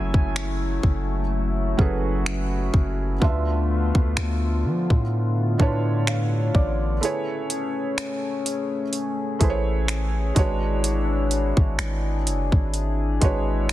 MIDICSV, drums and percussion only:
0, 0, Header, 1, 2, 480
1, 0, Start_track
1, 0, Key_signature, 3, "major"
1, 0, Tempo, 952381
1, 1621, Time_signature, 4, 2, 24, 8
1, 6919, End_track
2, 0, Start_track
2, 0, Title_t, "Drums"
2, 71, Note_on_c, 9, 36, 100
2, 121, Note_off_c, 9, 36, 0
2, 181, Note_on_c, 9, 26, 114
2, 232, Note_off_c, 9, 26, 0
2, 420, Note_on_c, 9, 36, 83
2, 471, Note_off_c, 9, 36, 0
2, 901, Note_on_c, 9, 36, 85
2, 951, Note_off_c, 9, 36, 0
2, 1141, Note_on_c, 9, 26, 102
2, 1191, Note_off_c, 9, 26, 0
2, 1379, Note_on_c, 9, 36, 99
2, 1430, Note_off_c, 9, 36, 0
2, 1621, Note_on_c, 9, 36, 117
2, 1672, Note_off_c, 9, 36, 0
2, 1991, Note_on_c, 9, 36, 96
2, 2041, Note_off_c, 9, 36, 0
2, 2101, Note_on_c, 9, 26, 104
2, 2151, Note_off_c, 9, 26, 0
2, 2471, Note_on_c, 9, 36, 90
2, 2521, Note_off_c, 9, 36, 0
2, 2820, Note_on_c, 9, 36, 90
2, 2871, Note_off_c, 9, 36, 0
2, 3061, Note_on_c, 9, 26, 108
2, 3111, Note_off_c, 9, 26, 0
2, 3299, Note_on_c, 9, 36, 99
2, 3350, Note_off_c, 9, 36, 0
2, 3543, Note_on_c, 9, 42, 73
2, 3593, Note_off_c, 9, 42, 0
2, 3780, Note_on_c, 9, 42, 67
2, 3830, Note_off_c, 9, 42, 0
2, 4021, Note_on_c, 9, 26, 108
2, 4025, Note_on_c, 9, 42, 58
2, 4071, Note_off_c, 9, 26, 0
2, 4075, Note_off_c, 9, 42, 0
2, 4264, Note_on_c, 9, 42, 69
2, 4314, Note_off_c, 9, 42, 0
2, 4499, Note_on_c, 9, 42, 51
2, 4550, Note_off_c, 9, 42, 0
2, 4741, Note_on_c, 9, 36, 82
2, 4741, Note_on_c, 9, 42, 57
2, 4791, Note_off_c, 9, 36, 0
2, 4791, Note_off_c, 9, 42, 0
2, 4981, Note_on_c, 9, 26, 106
2, 4982, Note_on_c, 9, 42, 64
2, 5032, Note_off_c, 9, 26, 0
2, 5032, Note_off_c, 9, 42, 0
2, 5222, Note_on_c, 9, 36, 105
2, 5222, Note_on_c, 9, 42, 67
2, 5272, Note_off_c, 9, 36, 0
2, 5272, Note_off_c, 9, 42, 0
2, 5463, Note_on_c, 9, 42, 72
2, 5514, Note_off_c, 9, 42, 0
2, 5700, Note_on_c, 9, 42, 65
2, 5750, Note_off_c, 9, 42, 0
2, 5831, Note_on_c, 9, 36, 94
2, 5881, Note_off_c, 9, 36, 0
2, 5941, Note_on_c, 9, 26, 109
2, 5945, Note_on_c, 9, 42, 59
2, 5991, Note_off_c, 9, 26, 0
2, 5995, Note_off_c, 9, 42, 0
2, 6183, Note_on_c, 9, 42, 68
2, 6234, Note_off_c, 9, 42, 0
2, 6311, Note_on_c, 9, 36, 94
2, 6362, Note_off_c, 9, 36, 0
2, 6419, Note_on_c, 9, 42, 51
2, 6469, Note_off_c, 9, 42, 0
2, 6661, Note_on_c, 9, 36, 87
2, 6661, Note_on_c, 9, 42, 58
2, 6711, Note_off_c, 9, 36, 0
2, 6711, Note_off_c, 9, 42, 0
2, 6901, Note_on_c, 9, 26, 106
2, 6902, Note_on_c, 9, 42, 62
2, 6919, Note_off_c, 9, 26, 0
2, 6919, Note_off_c, 9, 42, 0
2, 6919, End_track
0, 0, End_of_file